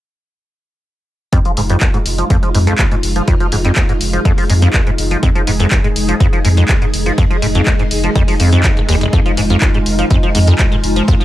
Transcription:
1.32 1.39 F2 loud
1.32 11.25 G#3 medium
1.32 11.25 D#4 medium
1.32 5.21 F4 medium
1.32 kick loud
1.32 closed hi-hat medium
1.45 1.52 F3 medium
1.45 closed hi-hat soft
1.57 1.74 F1 loud
1.57 1.61 G#2 medium
1.57 open hi-hat loud
1.70 1.76 F2 medium
1.70 closed hi-hat medium
1.81 1.88 D#2 medium
1.81 kick loud
1.81 clap loud
1.81 closed hi-hat soft
1.94 1.98 G#2 medium
1.94 closed hi-hat soft
2.06 2.23 F1 medium
2.06 open hi-hat loud
2.18 2.25 F3 medium
2.18 closed hi-hat medium
2.30 2.37 F2 loud
2.30 kick loud
2.30 closed hi-hat medium
2.43 2.49 F3 medium
2.43 closed hi-hat soft
2.54 2.72 F2 medium
2.54 2.59 G#2 medium
2.54 open hi-hat loud
2.67 2.74 F2 loud
2.67 closed hi-hat medium
2.78 2.86 D#2 medium
2.78 kick loud
2.78 clap loud
2.78 closed hi-hat medium
2.91 2.95 G#2 medium
2.91 closed hi-hat soft
3.03 3.20 F1 loud
3.03 open hi-hat medium
3.16 3.22 F3 medium
3.16 closed hi-hat medium
3.28 3.35 F2 loud
3.28 kick loud
3.28 closed hi-hat medium
3.40 3.47 F3 medium
3.40 closed hi-hat soft
3.52 3.69 F1 medium
3.52 3.56 G#2 medium
3.52 open hi-hat loud
3.65 3.71 F2 loud
3.65 closed hi-hat soft
3.76 3.83 D#2 medium
3.76 kick loud
3.76 clap loud
3.76 closed hi-hat soft
3.89 3.93 G#2 medium
3.89 closed hi-hat soft
4.01 4.18 F1 medium
4.01 open hi-hat loud
4.13 4.20 F3 medium
4.13 closed hi-hat soft
4.25 4.32 F2 loud
4.25 kick loud
4.25 closed hi-hat soft
4.38 4.44 F3 medium
4.38 open hi-hat medium
4.50 4.67 F2 loud
4.50 4.54 G#2 medium
4.50 open hi-hat loud
4.62 4.69 F2 loud
4.62 closed hi-hat medium
4.74 4.81 D#2 medium
4.74 kick loud
4.74 clap loud
4.74 closed hi-hat soft
4.87 4.90 G#2 medium
4.87 closed hi-hat soft
4.98 5.15 F1 loud
4.98 open hi-hat loud
5.11 5.17 F3 medium
5.11 closed hi-hat soft
5.23 5.30 F2 loud
5.23 9.12 G#4 medium
5.23 kick loud
5.23 closed hi-hat soft
5.35 5.42 F3 medium
5.35 closed hi-hat soft
5.47 5.64 F1 loud
5.47 5.51 G#2 medium
5.47 open hi-hat loud
5.60 5.66 F2 loud
5.60 closed hi-hat soft
5.71 5.78 D#2 medium
5.71 kick loud
5.71 clap loud
5.71 closed hi-hat soft
5.84 5.88 G#2 medium
5.84 closed hi-hat soft
5.96 6.13 F1 medium
5.96 open hi-hat loud
6.08 6.15 F3 medium
6.08 closed hi-hat soft
6.20 6.27 F2 loud
6.20 kick loud
6.20 closed hi-hat medium
6.33 6.39 F3 medium
6.33 closed hi-hat soft
6.45 6.62 F2 medium
6.45 6.49 G#2 medium
6.45 open hi-hat loud
6.57 6.64 F2 loud
6.57 closed hi-hat soft
6.69 6.76 D#2 medium
6.69 kick loud
6.69 clap loud
6.69 closed hi-hat soft
6.82 6.86 G#2 medium
6.82 closed hi-hat soft
6.94 7.11 F1 loud
6.94 open hi-hat loud
7.06 7.13 F3 medium
7.06 closed hi-hat soft
7.18 7.25 F2 loud
7.18 kick loud
7.18 closed hi-hat soft
7.30 7.37 F3 medium
7.30 closed hi-hat soft
7.42 7.59 F1 medium
7.42 7.46 G#2 medium
7.42 open hi-hat loud
7.55 7.61 F2 loud
7.55 closed hi-hat soft
7.66 7.74 D#2 medium
7.66 kick loud
7.66 clap loud
7.66 closed hi-hat soft
7.79 7.83 G#2 medium
7.79 closed hi-hat soft
7.91 8.08 F1 medium
7.91 open hi-hat loud
8.04 8.10 F3 medium
8.04 closed hi-hat soft
8.15 8.22 F2 loud
8.15 kick loud
8.15 closed hi-hat medium
8.28 8.34 F3 medium
8.28 open hi-hat medium
8.40 8.50 F2 medium
8.40 8.57 F2 medium
8.40 open hi-hat loud
8.52 8.62 F2 loud
8.52 closed hi-hat soft
8.64 kick loud
8.64 clap loud
8.64 closed hi-hat soft
8.77 8.81 F1 loud
8.77 closed hi-hat soft
8.89 9.06 F1 medium
8.89 8.96 D#2 loud
8.89 open hi-hat loud
9.01 9.08 F1 loud
9.01 closed hi-hat soft
9.13 9.20 F2 loud
9.13 11.25 F4 medium
9.13 kick loud
9.13 closed hi-hat soft
9.25 9.32 F3 medium
9.25 closed hi-hat soft
9.37 9.54 F1 medium
9.37 9.41 G#2 medium
9.37 open hi-hat medium
9.50 9.56 F2 loud
9.50 closed hi-hat soft
9.61 9.69 D#2 medium
9.61 kick loud
9.61 clap loud
9.61 closed hi-hat soft
9.74 9.78 G#2 medium
9.74 closed hi-hat soft
9.86 10.03 F1 medium
9.86 open hi-hat loud
9.99 10.05 F3 medium
9.99 closed hi-hat soft
10.10 10.17 F2 loud
10.10 kick loud
10.10 closed hi-hat soft
10.23 10.30 F3 medium
10.23 closed hi-hat soft
10.35 10.52 F2 medium
10.35 10.39 G#2 medium
10.35 open hi-hat loud
10.47 10.54 F2 loud
10.47 closed hi-hat medium
10.59 10.66 D#2 medium
10.59 kick loud
10.59 clap loud
10.59 closed hi-hat soft
10.72 10.76 G#2 medium
10.72 closed hi-hat soft
10.84 11.01 F1 loud
10.84 open hi-hat loud
10.96 11.03 F3 medium
10.96 closed hi-hat soft
11.08 11.15 F2 loud
11.08 kick loud
11.08 closed hi-hat medium
11.20 11.25 F3 medium
11.20 closed hi-hat soft

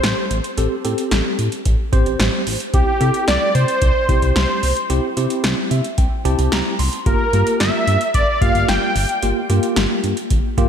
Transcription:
0.00 0.14 A1 loud
0.00 0.26 C4 medium
0.00 0.26 G4 medium
0.00 0.26 C5 medium
0.00 0.31 C5 loud
0.00 snare loud
0.00 closed hi-hat medium
0.31 0.41 A1 loud
0.31 closed hi-hat medium
0.44 closed hi-hat medium
0.58 0.68 A1 loud
0.58 0.74 C4 medium
0.58 0.74 G4 medium
0.58 0.74 A4 medium
0.58 closed hi-hat medium
0.85 0.95 A2 loud
0.85 1.50 C4 medium
0.85 1.50 G4 medium
0.85 1.50 A4 medium
0.85 closed hi-hat medium
0.98 closed hi-hat medium
1.11 1.22 A1 loud
1.11 snare loud
1.11 closed hi-hat medium
1.39 1.49 A2 medium
1.39 closed hi-hat medium
1.52 closed hi-hat medium
1.65 1.76 A1 loud
1.65 kick medium
1.65 closed hi-hat medium
1.93 2.03 A1 loud
1.93 2.42 C4 medium
1.93 2.42 G4 medium
1.93 2.42 C5 loud
1.93 kick medium
1.93 closed hi-hat medium
2.06 2.16 A1 medium
2.06 closed hi-hat soft
2.20 2.30 A1 loud
2.20 snare loud
2.20 closed hi-hat medium
2.47 2.57 A1 medium
2.47 open hi-hat medium
2.60 closed hi-hat medium
2.74 2.84 C2 loud
2.74 2.90 C4 medium
2.74 2.90 E4 medium
2.74 2.90 G4 medium
2.74 3.24 G4 loud
2.74 kick loud
2.74 closed hi-hat medium
3.01 3.11 C3 loud
3.01 3.67 C4 medium
3.01 3.67 E4 medium
3.01 3.67 A4 medium
3.01 closed hi-hat medium
3.14 closed hi-hat medium
3.28 3.38 C2 loud
3.28 3.53 D5 loud
3.28 snare loud
3.28 closed hi-hat medium
3.55 3.65 C3 medium
3.55 4.32 C5 loud
3.55 closed hi-hat medium
3.68 closed hi-hat soft
3.82 3.92 C2 loud
3.82 kick medium
3.82 closed hi-hat medium
4.09 4.19 C2 loud
4.09 4.58 C4 medium
4.09 4.58 E4 medium
4.09 4.58 G4 medium
4.09 kick medium
4.09 closed hi-hat medium
4.22 4.32 C2 loud
4.22 closed hi-hat soft
4.36 4.46 C2 loud
4.36 4.74 C5 medium
4.36 snare loud
4.36 closed hi-hat medium
4.63 4.73 C2 loud
4.63 open hi-hat medium
4.77 closed hi-hat medium
4.90 5.00 C2 loud
4.90 5.06 C4 medium
4.90 5.06 E4 medium
4.90 5.06 G4 medium
4.90 closed hi-hat medium
5.17 5.27 C3 loud
5.17 5.83 C4 medium
5.17 5.83 E4 medium
5.17 5.83 G4 medium
5.17 closed hi-hat medium
5.30 closed hi-hat medium
5.44 5.54 C2 loud
5.44 snare loud
5.44 closed hi-hat medium
5.71 5.81 C3 loud
5.71 5.96 E5 medium
5.71 closed hi-hat medium
5.84 closed hi-hat soft
5.98 6.08 C2 loud
5.98 6.23 G5 medium
5.98 kick medium
5.98 closed hi-hat medium
6.25 6.35 C2 medium
6.25 6.75 C4 medium
6.25 6.75 E4 medium
6.25 6.74 G4 loud
6.25 6.50 A5 medium
6.25 closed hi-hat medium
6.39 6.49 C2 loud
6.39 closed hi-hat soft
6.52 6.62 C2 loud
6.52 6.77 A#5 medium
6.52 snare loud
6.52 closed hi-hat medium
6.79 6.89 C2 loud
6.79 7.04 C6 medium
6.79 open hi-hat medium
6.93 closed hi-hat medium
7.06 7.16 G1 loud
7.06 7.23 A#3 medium
7.06 7.23 F4 medium
7.06 7.23 G4 medium
7.06 7.57 A#4 loud
7.06 kick loud
7.06 closed hi-hat medium
7.33 7.43 G2 loud
7.33 7.99 A#3 medium
7.33 7.99 F4 medium
7.33 7.99 G4 medium
7.33 closed hi-hat medium
7.47 closed hi-hat medium
7.60 7.70 G1 loud
7.60 8.11 E5 loud
7.60 snare loud
7.60 closed hi-hat medium
7.87 7.97 G2 loud
7.87 closed hi-hat medium
8.01 closed hi-hat medium
8.14 8.24 G1 loud
8.14 8.40 D5 loud
8.14 kick medium
8.14 closed hi-hat medium
8.41 8.51 G1 loud
8.41 8.91 A#3 medium
8.41 8.91 F4 medium
8.41 8.91 G4 medium
8.41 8.70 F5 loud
8.41 kick medium
8.41 closed hi-hat medium
8.55 8.65 G1 medium
8.55 closed hi-hat soft
8.68 8.78 G1 loud
8.68 9.22 G5 loud
8.68 snare loud
8.68 closed hi-hat medium
8.96 9.06 G1 loud
8.96 open hi-hat medium
9.09 closed hi-hat medium
9.23 9.33 G1 loud
9.23 9.39 A#3 medium
9.23 9.39 F4 medium
9.23 9.39 G4 medium
9.23 closed hi-hat medium
9.50 9.60 G2 medium
9.50 10.15 A#3 medium
9.50 10.15 F4 medium
9.50 10.15 G4 medium
9.50 closed hi-hat medium
9.63 closed hi-hat medium
9.76 9.87 G1 loud
9.76 snare loud
9.76 closed hi-hat medium
10.04 10.14 G2 loud
10.04 closed hi-hat medium
10.17 closed hi-hat medium
10.30 10.41 G1 loud
10.30 kick medium
10.30 closed hi-hat medium
10.58 10.68 G1 loud
10.58 10.69 A#3 medium
10.58 10.69 F4 medium
10.58 10.69 G4 loud
10.58 kick medium
10.58 closed hi-hat medium

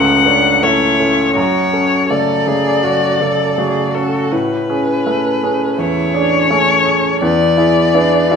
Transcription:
0.00 0.26 C#2 soft
0.00 1.35 F#2 medium
0.00 0.63 A3 soft
0.00 0.28 C#4 medium
0.00 0.64 C#4 soft
0.00 0.26 A4 soft
0.00 0.65 F#5 medium
0.26 0.64 D4 medium
0.26 0.59 A4 soft
0.26 0.59 C#5 soft
0.63 0.96 A3 soft
0.63 0.96 C#4 soft
0.63 1.36 E4 soft
0.63 0.96 A4 soft
0.63 1.35 C#5 medium
0.99 1.32 C#4 soft
0.99 1.33 A4 soft
1.35 1.71 F#2 soft
1.35 2.02 F#4 soft
1.35 2.11 C#5 medium
1.73 2.06 C#4 soft
1.73 2.06 A4 soft
2.10 2.44 C#3 soft
2.10 2.43 A3 soft
2.10 2.49 A4 soft
2.10 2.44 A4 soft
2.10 3.97 D5 medium
2.47 2.80 C#3 soft
2.47 2.81 A3 soft
2.47 2.85 G#4 soft
2.83 3.19 F#2 soft
2.83 3.22 F#4 soft
3.21 3.54 C#3 soft
3.21 3.59 A4 soft
3.21 3.54 A4 soft
3.58 3.91 C#3 soft
3.58 3.91 A3 soft
3.58 3.91 F#4 soft
3.58 3.94 G#4 soft
3.95 4.28 C#4 soft
3.95 4.31 F#4 soft
3.95 4.28 A4 soft
3.95 4.33 A4 soft
4.31 4.68 A2 soft
4.31 5.80 B4 medium
4.69 5.02 C#4 soft
4.69 5.02 G#4 soft
5.06 5.39 A3 soft
5.06 5.39 C#4 soft
5.06 5.40 G#4 soft
5.43 5.76 C#4 soft
5.43 5.76 G#4 soft
5.78 6.14 E2 soft
5.78 6.17 E4 soft
5.78 7.22 C#5 medium
6.14 6.51 D4 soft
6.14 6.47 G#4 soft
6.14 6.47 C#5 soft
6.50 6.83 A3 soft
6.50 7.24 C#4 medium
6.50 6.83 C#4 soft
6.50 6.83 G#4 soft
6.85 7.19 C#4 soft
6.85 7.19 G#4 soft
7.22 7.58 E2 soft
7.22 7.97 B3 medium
7.22 8.36 D5 medium
7.57 7.91 E4 soft
7.57 7.91 G#4 soft
7.95 8.28 B3 soft
7.95 8.33 D4 medium
7.95 8.28 E4 soft
7.95 8.28 G#4 soft
8.31 8.36 E4 soft
8.31 8.36 F#4 medium
8.31 8.36 G#4 soft

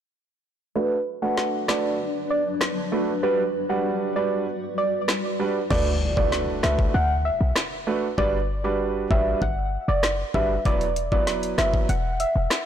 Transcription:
0.76 3.21 F#3 medium
0.76 0.94 A3 medium
0.76 0.94 D4 medium
0.76 3.21 D4 medium
0.76 0.94 F#4 medium
0.76 0.96 B4 loud
0.76 5.67 B4 medium
0.76 0.94 B4 loud
1.22 1.65 A3 medium
1.22 1.65 D4 medium
1.22 1.65 F#4 medium
1.22 1.65 B4 medium
1.22 1.42 F#5 medium
1.38 snare medium
1.68 1.97 A3 medium
1.68 1.97 D4 medium
1.68 1.97 F#4 medium
1.68 1.97 B4 medium
1.68 1.89 D5 medium
1.68 cross-stick medium
1.68 snare loud
2.31 2.41 D5 medium
2.61 cross-stick medium
2.61 snare loud
2.92 3.10 A3 medium
2.92 3.10 D4 medium
2.92 3.10 F#4 medium
2.92 3.10 B4 medium
3.23 3.41 G3 medium
3.23 5.68 G3 medium
3.23 3.41 D4 medium
3.23 5.68 F#4 medium
3.23 3.41 F#4 medium
3.23 3.43 B4 loud
3.23 3.41 B4 loud
3.69 4.12 G3 medium
3.69 4.12 D4 medium
3.69 4.12 F#4 medium
3.69 4.12 B4 medium
3.69 3.90 F#5 medium
4.16 4.44 G3 medium
4.16 4.44 D4 medium
4.16 4.45 F#4 medium
4.16 4.45 B4 medium
4.16 4.36 D5 medium
4.78 4.88 D5 medium
5.08 cross-stick medium
5.08 snare loud
5.39 5.58 G3 medium
5.39 5.58 D4 medium
5.39 5.58 F#4 medium
5.39 5.58 B4 medium
5.70 6.59 D2 loud
5.70 5.88 A3 medium
5.70 5.89 D4 medium
5.70 5.89 F#4 medium
5.70 5.89 B4 loud
5.70 5.81 D5 loud
5.70 kick loud
5.70 crash medium
5.70 impact medium
6.17 6.60 A3 medium
6.17 6.60 D4 medium
6.17 6.60 F#4 medium
6.17 6.60 B4 medium
6.17 6.27 D5 medium
6.17 kick medium
6.32 snare medium
6.63 6.87 C#2 medium
6.63 6.92 A3 medium
6.63 6.92 D4 medium
6.63 6.92 F#4 medium
6.63 6.92 B4 medium
6.63 6.74 E5 medium
6.63 cross-stick medium
6.63 snare loud
6.79 kick medium
6.94 7.30 D2 loud
6.94 7.04 F#5 medium
7.25 7.35 E5 medium
7.41 7.53 B1 medium
7.56 cross-stick medium
7.56 snare loud
7.87 8.05 A3 medium
7.87 8.05 D4 medium
7.87 8.05 F#4 medium
7.87 8.05 B4 medium
8.18 9.07 G1 loud
8.18 8.36 G3 medium
8.18 8.36 D4 medium
8.18 8.36 F#4 medium
8.18 8.36 B4 loud
8.18 8.28 D5 loud
8.18 kick loud
8.64 9.07 G3 medium
8.64 9.07 D4 medium
8.64 9.07 F#4 medium
8.64 9.07 B4 medium
8.64 8.75 D5 medium
9.11 9.35 A1 medium
9.11 9.39 G3 medium
9.11 9.39 D4 medium
9.11 9.39 F#4 medium
9.11 9.39 B4 medium
9.11 9.21 E5 medium
9.11 kick medium
9.42 9.78 G1 loud
9.42 9.52 F#5 medium
9.42 kick medium
9.88 10.24 F#1 medium
9.88 9.98 D5 medium
10.03 cross-stick loud
10.03 snare loud
10.34 10.59 G1 loud
10.34 10.52 G3 medium
10.34 10.52 D4 medium
10.34 10.53 F#4 medium
10.34 10.53 B4 medium
10.34 10.45 E5 medium
10.34 kick medium
10.65 11.54 E1 loud
10.65 10.83 F#3 medium
10.65 10.83 B3 medium
10.65 10.84 E4 medium
10.65 10.84 B4 loud
10.65 10.76 D5 loud
10.65 kick loud
10.65 closed hi-hat medium
10.81 closed hi-hat medium
10.96 closed hi-hat medium
11.12 11.54 F#3 medium
11.12 11.55 B3 medium
11.12 11.55 E4 medium
11.12 11.55 B4 medium
11.12 11.22 D5 medium
11.12 kick medium
11.27 snare medium
11.27 closed hi-hat medium
11.43 closed hi-hat medium
11.58 11.82 F#1 medium
11.58 11.87 F#3 medium
11.58 11.87 B3 medium
11.58 11.87 E4 medium
11.58 11.87 B4 medium
11.58 11.68 E5 medium
11.58 cross-stick medium
11.58 snare loud
11.58 closed hi-hat medium
11.74 kick medium
11.89 12.25 E1 loud
11.89 11.99 F#5 medium
11.89 closed hi-hat medium
12.20 12.30 E5 medium
12.20 closed hi-hat medium
12.36 12.48 E1 medium
12.50 cross-stick medium
12.50 snare loud
12.50 closed hi-hat medium

